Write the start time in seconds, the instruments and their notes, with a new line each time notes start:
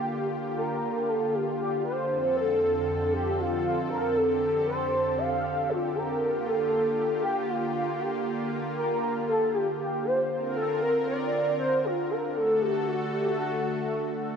Already playing: analog synth pad D3 A#3 F4 G4, analog synth lead G4
0.57 analog synth lead A#4
1.08 analog synth lead A4
1.34 analog synth lead G4
1.59 analog synth lead G4
1.85 analog synth lead C5
2.10 analog synth pad F2 C4 A4
2.36 analog synth lead A4
3.13 analog synth lead G4
3.39 analog synth lead F4
3.64 analog synth lead F4
3.90 analog synth lead A#4
4.15 analog synth pad G4, analog synth lead A4
4.67 analog synth lead C5
5.18 analog synth lead F5
5.69 analog synth lead F4
5.95 analog synth lead A#4
6.21 analog synth pad A#3 F4
6.46 analog synth lead A4
7.23 analog synth lead G4
7.49 analog synth lead F4
7.75 analog synth lead F4
8.00 analog synth lead G4
8.76 analog synth lead A#4
9.28 analog synth lead A4
9.54 analog synth lead G4
9.79 analog synth lead G4
10.05 analog synth lead C5
10.31 analog synth pad D3 C4 F4 A#4
10.56 analog synth lead A4
10.82 analog synth lead A#4
11.07 analog synth lead D5
11.59 analog synth lead C5
11.84 analog synth lead F4
12.10 analog synth lead A#4
12.36 analog synth pad A3 F#4 A4, analog synth lead A4
12.61 analog synth lead G4
12.87 analog synth lead F#4
13.13 analog synth lead G4
13.38 analog synth lead F#4